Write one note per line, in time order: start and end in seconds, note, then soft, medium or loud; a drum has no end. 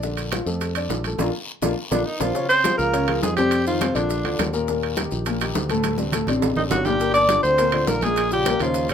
0.00 0.40 A#1 medium
0.00 0.27 D3 medium
0.00 0.27 D4 medium
0.00 high bongo medium
0.00 high conga soft
0.00 long guiro medium
0.00 maracas medium
0.17 high bongo soft
0.17 high conga soft
0.17 high timbale medium
0.17 maracas medium
0.32 0.44 F3 medium
0.32 0.44 F4 medium
0.32 high bongo medium
0.32 high conga medium
0.32 high timbale medium
0.32 low timbale medium
0.32 short guiro medium
0.32 maracas medium
0.46 0.87 F2 medium
0.46 0.70 A3 medium
0.46 0.71 A4 medium
0.46 high bongo soft
0.46 high conga soft
0.46 short guiro medium
0.46 maracas soft
0.61 high bongo medium
0.61 high conga soft
0.61 high timbale medium
0.61 long guiro medium
0.61 maracas medium
0.75 1.00 D4 medium
0.75 1.00 D5 medium
0.75 high bongo soft
0.75 high conga soft
0.75 high timbale medium
0.75 maracas medium
0.89 1.17 A#1 medium
0.89 high bongo medium
0.89 low bongo medium
0.89 high conga medium
0.89 low timbale medium
0.89 short guiro medium
0.89 maracas medium
1.04 1.18 A3 medium
1.04 1.18 A4 medium
1.04 high conga medium
1.04 high timbale medium
1.04 short guiro medium
1.04 maracas soft
1.18 1.30 A#1 medium
1.18 1.30 A#3 medium
1.18 1.29 D4 medium
1.18 1.29 F4 medium
1.18 low bongo medium
1.18 low conga medium
1.18 high timbale medium
1.18 long guiro medium
1.18 maracas medium
1.62 1.73 A#1 medium
1.62 1.72 A#3 medium
1.62 1.72 D4 medium
1.62 1.72 F4 medium
1.62 low bongo medium
1.62 low conga medium
1.62 high timbale loud
1.62 long guiro medium
1.62 maracas medium
1.91 2.02 A#1 medium
1.91 2.07 D3 medium
1.91 2.01 A#3 medium
1.91 2.01 D4 medium
1.91 2.07 D4 medium
1.91 2.01 F4 medium
1.91 low bongo medium
1.91 low conga medium
1.91 high timbale medium
1.91 long guiro medium
1.91 maracas medium
2.05 2.22 D#3 medium
2.05 2.22 D#4 medium
2.20 2.31 A#1 medium
2.20 2.49 F3 medium
2.20 2.30 A#3 medium
2.20 2.30 D4 medium
2.20 2.30 F4 medium
2.20 2.49 F4 medium
2.20 low bongo medium
2.20 low conga medium
2.20 high timbale medium
2.20 long guiro medium
2.20 maracas medium
2.34 2.59 C#3 medium
2.34 2.59 C#4 medium
2.34 2.59 C#5 medium
2.34 high bongo medium
2.34 high conga soft
2.34 long guiro medium
2.34 maracas medium
2.49 2.77 C4 medium
2.49 2.77 C5 loud
2.49 high bongo soft
2.49 high conga soft
2.49 high timbale medium
2.49 maracas medium
2.63 2.88 F3 medium
2.63 2.88 F4 medium
2.63 2.88 G#4 medium
2.63 high bongo medium
2.63 high conga loud
2.63 high timbale medium
2.63 low timbale medium
2.63 short guiro medium
2.63 maracas medium
2.78 3.20 C#2 medium
2.78 3.20 A#3 medium
2.78 3.19 A#4 loud
2.78 high bongo soft
2.78 short guiro medium
2.78 maracas soft
2.93 3.05 C#3 medium
2.93 3.05 C#4 medium
2.93 3.05 C#5 medium
2.93 high bongo medium
2.93 high conga soft
2.93 high timbale medium
2.93 long guiro medium
2.93 maracas medium
3.08 3.32 F3 medium
3.08 3.32 F4 medium
3.08 3.32 G#4 medium
3.08 high bongo soft
3.08 high conga soft
3.08 high timbale medium
3.22 3.90 F2 medium
3.22 3.36 G#3 medium
3.22 3.36 G#4 medium
3.22 high bongo medium
3.22 low bongo medium
3.22 high conga medium
3.22 low timbale medium
3.22 short guiro medium
3.22 maracas medium
3.36 3.62 C3 medium
3.36 3.64 G3 medium
3.36 3.62 C4 medium
3.36 3.64 G4 medium
3.36 3.62 C5 medium
3.36 high conga medium
3.36 high timbale medium
3.36 short guiro medium
3.36 maracas soft
3.51 high bongo medium
3.51 high conga soft
3.51 high timbale medium
3.51 long guiro medium
3.51 maracas medium
3.65 3.79 D#3 medium
3.65 3.97 F3 medium
3.65 3.79 D#4 medium
3.65 3.97 F4 medium
3.65 3.79 F4 medium
3.65 high bongo soft
3.65 high conga soft
3.65 maracas medium
3.81 3.93 C3 medium
3.81 3.93 C4 medium
3.81 3.93 C5 medium
3.81 high bongo medium
3.81 high conga loud
3.81 high timbale medium
3.81 low timbale medium
3.81 short guiro medium
3.81 maracas medium
3.95 4.22 A#1 medium
3.95 4.19 D3 medium
3.95 4.53 D3 medium
3.95 4.19 D4 medium
3.95 4.54 D4 medium
3.95 4.20 F4 medium
3.95 high bongo soft
3.95 high timbale medium
3.95 short guiro medium
3.95 maracas soft
4.10 high bongo medium
4.10 high conga soft
4.10 long guiro medium
4.10 maracas medium
4.24 4.38 D2 medium
4.24 4.48 D3 medium
4.24 4.49 D4 medium
4.24 4.49 F4 medium
4.24 high conga soft
4.24 high timbale medium
4.39 5.06 D#2 medium
4.39 high bongo medium
4.39 low bongo medium
4.39 high conga medium
4.39 high timbale medium
4.39 low timbale medium
4.39 short guiro medium
4.39 maracas medium
4.53 4.65 A#2 medium
4.53 4.65 A#3 medium
4.53 4.66 A#4 medium
4.53 high bongo soft
4.53 short guiro medium
4.53 maracas soft
4.68 4.92 A#2 medium
4.68 4.93 A#3 medium
4.68 4.93 A#4 medium
4.68 high bongo medium
4.68 high conga soft
4.68 long guiro medium
4.68 maracas medium
4.83 high bongo soft
4.83 high conga soft
4.83 high timbale medium
4.97 5.21 D#3 medium
4.97 5.21 D#4 medium
4.97 5.22 G4 medium
4.97 high bongo medium
4.97 high conga loud
4.97 high timbale medium
4.97 low timbale medium
4.97 short guiro medium
4.97 maracas medium
5.11 5.52 A#1 medium
5.11 high bongo soft
5.11 high conga soft
5.11 short guiro medium
5.11 maracas soft
5.26 5.38 A#2 medium
5.26 5.39 A#3 medium
5.26 5.39 A#4 medium
5.26 high bongo medium
5.26 high conga soft
5.26 high timbale medium
5.26 long guiro medium
5.26 maracas medium
5.40 5.64 D#3 medium
5.40 5.65 D#4 medium
5.40 5.65 G4 medium
5.40 high bongo soft
5.40 high conga soft
5.40 high timbale medium
5.40 maracas medium
5.55 6.23 D2 medium
5.55 high bongo medium
5.55 low bongo medium
5.55 high conga medium
5.55 low timbale medium
5.55 short guiro medium
5.55 maracas medium
5.69 5.94 A2 medium
5.69 5.94 A3 medium
5.69 5.94 A4 medium
5.69 high conga medium
5.69 high timbale medium
5.69 short guiro medium
5.69 maracas soft
5.84 high bongo medium
5.84 high conga medium
5.84 high timbale medium
5.84 long guiro medium
5.84 maracas medium
5.98 6.11 C3 medium
5.98 6.11 C4 medium
5.98 6.11 D4 medium
5.98 high bongo soft
5.98 high conga loud
5.98 maracas medium
6.12 6.25 A2 medium
6.12 6.25 A3 medium
6.12 6.25 A4 medium
6.12 high bongo medium
6.12 low conga loud
6.12 high timbale medium
6.12 low timbale medium
6.12 short guiro medium
6.12 maracas medium
6.27 6.55 A1 medium
6.27 6.52 C3 medium
6.27 6.52 C4 medium
6.27 6.52 D4 medium
6.27 high bongo soft
6.27 low conga loud
6.27 high timbale medium
6.27 short guiro medium
6.27 maracas soft
6.42 high bongo medium
6.42 low conga medium
6.42 high timbale medium
6.42 long guiro medium
6.42 maracas medium
6.56 6.71 A1 medium
6.56 6.82 C3 medium
6.56 6.63 D#3 medium
6.56 6.81 C4 medium
6.56 6.82 D4 medium
6.56 6.63 D#4 medium
6.56 low conga medium
6.56 low timbale medium
6.70 7.39 G1 medium
6.70 6.87 F#3 medium
6.70 6.87 F#4 medium
6.70 high bongo medium
6.70 low bongo medium
6.70 low conga medium
6.70 low timbale medium
6.70 short guiro medium
6.70 maracas medium
6.85 6.98 A#2 medium
6.85 7.14 G3 medium
6.85 6.98 A#3 medium
6.85 7.13 G4 loud
6.85 6.98 A#4 medium
6.85 high bongo soft
6.85 low conga medium
6.85 low timbale medium
6.85 short guiro medium
6.85 maracas soft
6.99 7.24 A#2 medium
6.99 7.24 A#3 medium
6.99 7.25 A#4 medium
6.99 high bongo medium
6.99 high conga soft
6.99 long guiro medium
6.99 maracas medium
7.14 7.42 D4 medium
7.14 7.42 D5 loud
7.14 high bongo soft
7.14 high conga soft
7.14 high timbale medium
7.14 maracas medium
7.29 7.53 D3 medium
7.29 7.54 D4 medium
7.29 7.54 F4 medium
7.29 high bongo medium
7.29 high conga medium
7.29 high timbale medium
7.29 low timbale medium
7.29 short guiro medium
7.29 maracas medium
7.43 7.85 D2 medium
7.43 7.89 C4 medium
7.43 7.90 C5 loud
7.43 high bongo soft
7.43 high conga soft
7.43 short guiro medium
7.43 maracas soft
7.58 7.71 A#2 medium
7.58 7.71 A#3 medium
7.58 7.71 A#4 medium
7.58 high bongo medium
7.58 high conga soft
7.58 high timbale medium
7.58 long guiro medium
7.58 maracas medium
7.72 7.97 D3 medium
7.72 7.97 D4 medium
7.72 7.98 F4 medium
7.72 high bongo soft
7.72 high conga soft
7.72 high timbale medium
7.87 8.55 A#1 medium
7.87 8.04 A#3 medium
7.87 8.05 A#4 medium
7.87 high bongo medium
7.87 low bongo medium
7.87 high conga medium
7.87 low timbale medium
7.87 short guiro medium
7.87 maracas medium
8.01 8.26 A#2 medium
8.01 8.31 G#3 medium
8.01 8.27 A#3 medium
8.01 8.32 G#4 loud
8.01 8.27 A#4 medium
8.01 high conga medium
8.01 high timbale medium
8.01 short guiro medium
8.01 maracas soft
8.16 high bongo medium
8.16 high conga soft
8.16 high timbale medium
8.16 long guiro medium
8.16 maracas medium
8.31 8.43 C#3 medium
8.31 8.59 G3 medium
8.31 8.44 C#4 medium
8.31 8.44 F4 medium
8.31 8.60 G4 loud
8.31 high bongo soft
8.31 high conga soft
8.31 maracas medium
8.45 8.59 A#2 medium
8.45 8.59 A#3 medium
8.45 8.59 A#4 medium
8.45 high bongo medium
8.45 high conga loud
8.45 high timbale medium
8.45 low timbale medium
8.45 short guiro medium
8.45 maracas medium
8.60 8.88 D#2 medium
8.60 8.85 C#3 medium
8.60 8.88 F3 medium
8.60 8.85 C#4 medium
8.60 8.85 D#4 medium
8.60 8.89 F4 medium
8.60 high bongo soft
8.60 high timbale medium
8.60 short guiro medium
8.60 maracas soft
8.74 high bongo medium
8.74 high conga soft
8.74 long guiro medium
8.74 maracas medium
8.89 8.94 A1 medium
8.89 8.94 C#3 medium
8.89 high conga soft
8.89 high timbale medium
8.89 maracas medium